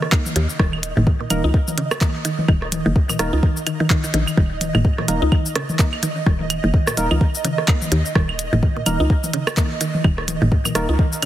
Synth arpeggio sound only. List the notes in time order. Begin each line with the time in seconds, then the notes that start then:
0.12 A#3
0.36 D#3
0.60 D#3
0.97 D#3
1.20 A#2
1.44 D#4
1.78 C#3
2.01 A#3
2.25 D#3
2.49 D#3
2.86 D#3
3.09 A#2
3.33 D#4
3.67 D#3
3.80 D#3
3.90 D#3
4.04 D#3
4.14 D#3
4.37 D#3
4.75 D#3
4.98 A#2
5.22 D#4
5.56 C#3
5.79 A#3
6.03 D#3
6.27 D#3
6.64 D#3
6.87 A#2
7.11 D#4
7.45 C#3
7.68 A#3
7.92 D#3
8.15 D#3
8.53 D#3
8.76 A#2
9.00 D#4
9.34 C#3
9.57 A#3
9.81 D#3
10.04 D#3
10.42 D#3
10.65 A#2
10.89 D#4
11.23 C#3